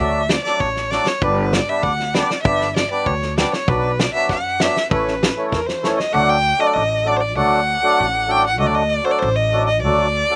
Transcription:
0.00 D2 F#3 A3 D4 E5
0.29 D5, snare
0.44 F#3 A3 D4 D5, snare
0.60 A1 C#5, kick
0.76 snare
0.91 F#3 A3 D4 D5, snare
1.06 C#5, snare
1.21 G1 G3 B3 D4 B4, kick
1.53 D5, snare
1.69 G3 B3 D4 E5
1.83 D2 F#5, kick
2.00 snare
2.14 G3 B3 D4 D5, snare
2.30 snare
2.43 G1 G3 B3 D4 E5, kick
2.61 snare
2.76 D5, snare
2.91 G3 B3 D4 D5
3.06 D2 C#5, kick
3.22 snare
3.38 G3 B3 D4 D5, snare
3.53 C#5, snare
3.67 B1 F#3 B3 D4 B4, kick
4.00 D5, snare
4.14 F#3 B3 D4 E5
4.29 F#2 F#5, kick, snare
4.60 F#3 B3 D4 E5, snare
4.76 snare
4.91 A1 E3 A3 C#4 B4, kick
5.08 snare
5.23 snare
5.36 E3 A3 C#4
5.51 E2 A#4, kick, snare
5.66 C5, snare
5.83 E3 A3 C#4, snare
5.98 D#5, snare
6.13 D2 F#3 A3 D4 F#5
6.29 G5
6.59 F#3 A3 D4 D#5
6.67 D5
6.74 A1 D#5
7.05 F#3 A3 D4 D5
7.17 C5 D5
7.36 D2 F#3 A3 D4 F#5
7.83 F#3 A3 D4
8.00 A1
8.28 F#3 A3 D4 G5
8.47 F#5
8.58 D2 F#3 A3 D4 D#5
8.67 D5
8.75 D#5
8.90 D5
9.04 F#3 A3 D4 C5
9.11 D5
9.19 A1 C5
9.36 D#5
9.53 F#3 A3 D4
9.67 D#5
9.82 D2 F#3 A3 D4 D5
10.30 F#3 A3 D4

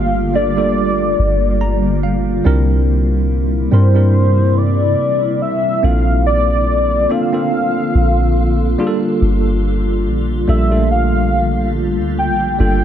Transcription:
Already playing: G1 D3 G3 A3 A#3 D4 F4 G4 F5
0.33 G3 A#3 D4 F4 A4 D5
0.56 G3 A#3 D4 F4 A4
1.19 G1
1.61 A#5
2.03 F5
2.44 C2 C3 G3 C4 D4 E4 A#4
3.71 G2 G3 C4 D4 E4 A#4 C5
3.94 G3 C4 D4 E4 A#4
4.57 D5
5.42 E5
5.83 A#1 D3 A#3 C4 D4 F4 A4 F5
6.26 D5
7.09 A#3 C4 D4 F4 A4 F5
7.32 A#3 C4 D4 F4 A4
7.95 A#1
8.78 G3 A#3 D4 F4 G#4
8.87 A4
9.21 G1
10.06 A#1
10.47 A#1 G3 A#3 D4 F4 A4 E5
10.70 G3 A3 D4 F4 A4
10.77 A#3
10.91 F5
11.98 D2
12.18 G5
12.29 A#1
12.59 G1 G3 A#3 D4 F4 A4 G5

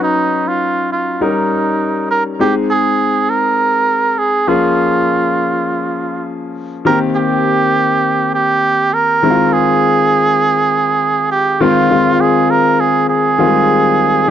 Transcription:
Already playing: F#3 C#4 D#4 B4
0.03 D#4
0.48 F4
0.92 F4
1.21 G3 C#4 D#4 A#4
2.11 A#4
2.39 G#3 C4 D#4 G4 G#4
2.70 G#4
3.30 A#4
4.18 G#4
4.47 F3 A#3 C#4 F4 G#4
6.85 D#3 A#3 C4 G4 A#4
7.16 G4
8.35 G4
8.94 A#4
9.23 D#3 G#3 C4 E4
9.30 F4
9.53 G#4
11.32 G4
11.60 D#3 G#3 C4 F4
11.90 D#3 G#3 C4 F4
12.21 G#4
12.51 A#4
12.80 G#4
13.10 G#4
13.38 D#3 G3 C4 F4
13.45 G#3

